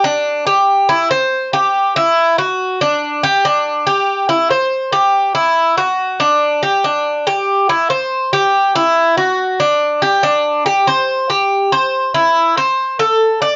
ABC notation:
X:1
M:4/4
L:1/8
Q:1/4=141
K:Clyd
V:1 name="Cuban tres"
D2 G2 E c2 G- | G E2 F2 D2 G | D2 G2 E c2 G- | G E2 F2 D2 G |
D2 G2 E c2 G- | G E2 F2 D2 G | D2 G c2 G2 c- | c E2 c2 A2 d |]